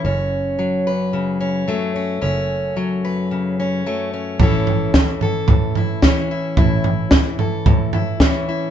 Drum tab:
SD |--------|--------|--o---o-|--o---o-|
FT |--------|--------|oo-ooo--|oo-ooo--|
BD |--------|--------|o-o-o-o-|o-o-o-o-|